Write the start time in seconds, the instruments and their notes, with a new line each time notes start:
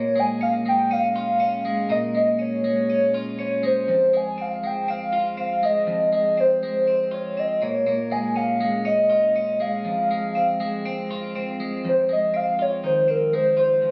Already playing: clean electric guitar A#2 F4, soft synth lead C#5
0.16 clean electric guitar G#3, soft synth lead G#5
0.41 clean electric guitar C#4, soft synth lead F5
0.66 clean electric guitar G#3, soft synth lead G5
0.91 clean electric guitar C#4, soft synth lead F5
1.16 clean electric guitar F4
1.40 clean electric guitar C#4
1.65 clean electric guitar G#3
1.90 clean electric guitar A#2, soft synth lead D#5
2.15 clean electric guitar G#3, soft synth lead D#5
2.39 clean electric guitar C#4, soft synth lead C#5
2.64 clean electric guitar G#3
2.90 clean electric guitar C#4
3.14 clean electric guitar F4
3.39 clean electric guitar C#4, soft synth lead C#5
3.63 clean electric guitar G#3, soft synth lead C5
3.88 clean electric guitar F2
4.13 clean electric guitar G#3, soft synth lead G#5
4.38 clean electric guitar C4, soft synth lead F5
4.63 clean electric guitar G#3, soft synth lead G5
4.88 clean electric guitar C4, soft synth lead F5
5.13 clean electric guitar F4
5.37 clean electric guitar C4, soft synth lead F5
5.63 clean electric guitar G#3, soft synth lead D#5
5.87 clean electric guitar F2
6.13 clean electric guitar G#3, soft synth lead D#5
6.38 clean electric guitar C4, soft synth lead C5
6.63 clean electric guitar G#3
6.87 clean electric guitar C4
7.11 clean electric guitar F4, soft synth lead C#5
7.37 clean electric guitar C4, soft synth lead D#5
7.62 clean electric guitar A#2, soft synth lead C#5
7.87 clean electric guitar A#2
8.11 clean electric guitar G#3, soft synth lead G#5
8.36 clean electric guitar C#4, soft synth lead F5
8.61 clean electric guitar G#3
8.85 clean electric guitar C#4, soft synth lead D#5
9.10 clean electric guitar F4
9.36 clean electric guitar C#4
9.60 clean electric guitar G#3, soft synth lead F5
9.85 clean electric guitar F2
10.11 clean electric guitar G#3
10.35 clean electric guitar C4
10.60 clean electric guitar G#3
10.86 clean electric guitar C4
11.11 clean electric guitar F4
11.36 clean electric guitar C4
11.60 clean electric guitar G#3
11.85 clean electric guitar F2
11.89 soft synth lead C5
12.09 clean electric guitar G#3, soft synth lead D#5
12.34 clean electric guitar C4, soft synth lead F5
12.59 clean electric guitar F4, soft synth lead C#5
12.84 clean electric guitar D#3, soft synth lead C5
13.08 clean electric guitar C4, soft synth lead A#4
13.33 clean electric guitar G#3, soft synth lead C5
13.57 clean electric guitar F4, soft synth lead C5
13.82 clean electric guitar F2